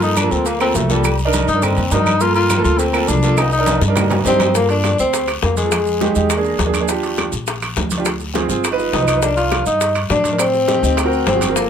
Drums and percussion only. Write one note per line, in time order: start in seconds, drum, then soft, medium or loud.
0.01 cowbell medium
0.01 high conga soft
0.01 low agogo medium
0.01 maracas soft
0.17 cowbell medium
0.17 high conga medium
0.17 low timbale medium
0.17 low agogo loud
0.17 short guiro medium
0.17 claves medium
0.17 maracas medium
0.31 high conga soft
0.31 short guiro medium
0.31 maracas soft
0.46 cowbell loud
0.46 high conga soft
0.46 low agogo medium
0.46 long guiro medium
0.46 maracas medium
0.61 cowbell medium
0.61 high conga soft
0.61 low agogo loud
0.61 claves medium
0.61 maracas soft
0.75 cowbell medium
0.75 high conga medium
0.75 low timbale medium
0.75 short guiro medium
0.75 maracas medium
0.90 cowbell medium
0.90 high conga medium
0.90 low agogo medium
0.90 short guiro medium
0.90 maracas soft
1.04 cowbell loud
1.04 high conga soft
1.04 low agogo medium
1.04 long guiro medium
1.04 claves medium
1.04 maracas medium
1.19 high conga soft
1.19 maracas soft
1.33 cowbell medium
1.33 high conga loud
1.33 low timbale medium
1.33 low agogo medium
1.33 short guiro medium
1.33 maracas medium
1.48 high conga soft
1.48 short guiro medium
1.48 maracas soft
1.62 cowbell loud
1.62 high conga soft
1.62 low conga medium
1.62 low agogo loud
1.62 long guiro medium
1.62 claves medium
1.62 maracas medium
1.77 high conga soft
1.77 low conga medium
1.77 low agogo loud
1.77 maracas soft
1.91 cowbell medium
1.91 high conga medium
1.91 low timbale medium
1.91 low agogo medium
1.91 short guiro medium
1.91 maracas medium
2.06 high conga medium
2.06 low agogo loud
2.06 short guiro medium
2.06 claves medium
2.06 maracas soft
2.21 cowbell loud
2.21 high conga soft
2.21 low agogo medium
2.21 long guiro medium
2.21 maracas medium
2.35 cowbell medium
2.35 high conga soft
2.35 low agogo medium
2.35 maracas soft
2.50 cowbell medium
2.50 high conga loud
2.50 low timbale medium
2.50 low agogo loud
2.50 short guiro medium
2.50 claves medium
2.50 maracas medium
2.65 high conga soft
2.65 short guiro medium
2.65 maracas soft
2.79 cowbell loud
2.79 high conga soft
2.79 low agogo medium
2.79 long guiro medium
2.79 maracas medium
2.93 cowbell medium
2.93 high conga soft
2.93 low agogo loud
2.93 claves medium
2.93 maracas soft
3.08 cowbell medium
3.08 high conga medium
3.08 low timbale medium
3.08 short guiro medium
3.08 maracas medium
3.22 cowbell medium
3.22 low agogo medium
3.22 short guiro medium
3.22 maracas soft
3.37 cowbell loud
3.37 high conga soft
3.37 high timbale loud
3.37 low agogo loud
3.37 long guiro medium
3.37 claves medium
3.37 maracas medium
3.52 high conga soft
3.52 maracas soft
3.66 cowbell medium
3.66 high conga loud
3.66 high timbale medium
3.66 low agogo medium
3.66 short guiro medium
3.66 maracas medium
3.81 high bongo medium
3.81 high conga soft
3.81 short guiro medium
3.81 maracas soft
3.96 cowbell loud
3.96 high bongo medium
3.96 high conga soft
3.96 low conga medium
3.96 low timbale loud
3.96 low agogo loud
3.96 long guiro medium
3.96 claves medium
3.96 maracas medium
4.10 low bongo loud
4.10 high conga soft
4.10 low conga medium
4.10 low timbale loud
4.10 low agogo medium
4.10 maracas soft
4.24 cowbell medium
4.24 low bongo medium
4.24 high conga medium
4.24 low timbale medium
4.24 low agogo medium
4.24 short guiro medium
4.24 maracas medium
4.40 low bongo medium
4.40 high conga medium
4.40 low timbale loud
4.40 low agogo loud
4.40 short guiro medium
4.40 claves medium
4.40 maracas soft
4.54 high bongo medium
4.54 high conga soft
4.54 long guiro medium
4.54 maracas medium
4.69 high bongo soft
4.69 high timbale medium
4.69 maracas soft
4.84 high bongo medium
4.84 high conga medium
4.84 high timbale loud
4.84 low timbale medium
4.84 short guiro medium
4.84 claves medium
4.84 maracas soft
4.98 high bongo soft
4.98 high conga soft
4.98 short guiro medium
4.98 maracas medium
5.13 high bongo medium
5.13 high conga soft
5.13 high timbale medium
5.13 long guiro medium
5.13 maracas medium
5.28 high bongo soft
5.28 high conga soft
5.28 high timbale medium
5.28 claves medium
5.28 maracas soft
5.42 high bongo medium
5.42 low bongo medium
5.42 high conga medium
5.42 low timbale medium
5.42 short guiro medium
5.42 maracas soft
5.57 high conga medium
5.57 high timbale medium
5.57 short guiro medium
5.57 maracas medium
5.72 high bongo medium
5.72 high conga soft
5.72 high timbale medium
5.72 long guiro medium
5.72 claves medium
5.72 maracas medium
5.86 high bongo soft
5.86 high conga soft
5.86 maracas soft
6.01 high bongo medium
6.01 high conga medium
6.01 high timbale medium
6.01 low timbale medium
6.01 short guiro medium
6.01 maracas soft
6.15 high conga soft
6.15 short guiro medium
6.15 maracas medium
6.30 high bongo medium
6.30 high timbale medium
6.30 long guiro medium
6.30 claves medium
6.30 maracas medium
6.45 high bongo soft
6.45 high conga soft
6.45 maracas soft
6.59 high bongo medium
6.59 low bongo medium
6.59 high conga medium
6.59 high timbale medium
6.59 low timbale medium
6.59 short guiro medium
6.59 maracas soft
6.73 high bongo soft
6.73 high conga medium
6.73 high timbale medium
6.73 short guiro medium
6.73 claves medium
6.73 maracas medium
6.88 high bongo medium
6.88 high conga soft
6.88 long guiro medium
6.88 maracas medium
7.03 high bongo soft
7.03 high timbale medium
7.03 maracas soft
7.18 high bongo medium
7.18 high conga soft
7.18 high timbale medium
7.18 low timbale medium
7.18 short guiro medium
7.18 claves medium
7.18 maracas soft
7.32 high bongo soft
7.32 high conga soft
7.32 short guiro medium
7.32 maracas medium
7.47 high bongo medium
7.47 high conga soft
7.47 high timbale medium
7.47 long guiro medium
7.47 maracas medium
7.62 high bongo soft
7.62 high conga soft
7.62 high timbale medium
7.62 claves medium
7.62 maracas soft
7.76 high bongo medium
7.76 low bongo medium
7.76 high conga medium
7.76 low timbale medium
7.76 short guiro medium
7.76 maracas soft
7.90 high conga medium
7.90 high timbale medium
7.90 short guiro medium
7.90 maracas medium
8.05 high bongo medium
8.05 high conga soft
8.05 high timbale medium
8.05 long guiro medium
8.05 claves medium
8.05 maracas medium
8.20 high bongo soft
8.20 high conga soft
8.20 maracas soft
8.34 high bongo medium
8.34 high conga medium
8.34 high timbale medium
8.34 low timbale medium
8.34 short guiro medium
8.34 maracas soft
8.49 high conga soft
8.49 short guiro medium
8.49 maracas medium
8.64 high bongo medium
8.64 high conga soft
8.64 high timbale medium
8.64 long guiro medium
8.64 claves medium
8.64 maracas medium
8.79 high bongo soft
8.79 high conga soft
8.79 maracas soft
8.93 high bongo medium
8.93 low bongo medium
8.93 high conga medium
8.93 high timbale medium
8.93 low timbale medium
8.93 short guiro medium
8.93 maracas soft
9.08 high bongo soft
9.08 high conga medium
9.08 high timbale medium
9.08 short guiro medium
9.08 claves medium
9.08 maracas medium
9.22 high bongo medium
9.22 high conga soft
9.22 long guiro medium
9.22 maracas medium
9.37 high bongo soft
9.37 high conga soft
9.37 high timbale medium
9.37 maracas soft
9.52 high bongo medium
9.52 high conga medium
9.52 high timbale loud
9.52 low timbale medium
9.52 short guiro medium
9.52 claves medium
9.52 maracas soft
9.66 high bongo soft
9.66 high conga soft
9.66 short guiro medium
9.66 maracas medium
9.81 high bongo medium
9.81 high conga soft
9.81 high timbale medium
9.81 long guiro medium
9.81 maracas medium
9.95 high bongo soft
9.95 high conga soft
9.95 high timbale loud
9.95 claves medium
9.95 maracas soft
10.10 high bongo medium
10.10 low bongo medium
10.10 high conga medium
10.10 low timbale medium
10.10 short guiro medium
10.10 maracas soft
10.24 high conga medium
10.24 high timbale medium
10.24 short guiro medium
10.24 maracas medium
10.38 high bongo medium
10.38 high conga soft
10.38 high timbale medium
10.38 long guiro medium
10.38 claves medium
10.38 maracas medium
10.54 high bongo soft
10.54 high conga soft
10.54 maracas soft
10.68 high bongo medium
10.68 high conga medium
10.68 high timbale medium
10.68 low timbale medium
10.68 short guiro medium
10.68 maracas soft
10.83 high conga soft
10.83 short guiro medium
10.83 maracas medium
10.97 high bongo medium
10.97 high conga soft
10.97 high timbale medium
10.97 long guiro medium
10.97 claves medium
10.97 maracas medium
11.12 high bongo soft
11.12 high conga soft
11.12 maracas soft
11.27 high bongo medium
11.27 low bongo medium
11.27 high conga medium
11.27 high timbale medium
11.27 low timbale medium
11.27 short guiro medium
11.27 maracas soft
11.41 high bongo soft
11.41 high conga medium
11.41 high timbale medium
11.41 short guiro medium
11.41 claves medium
11.41 maracas medium
11.56 high bongo medium
11.56 high conga soft
11.56 long guiro medium
11.56 maracas medium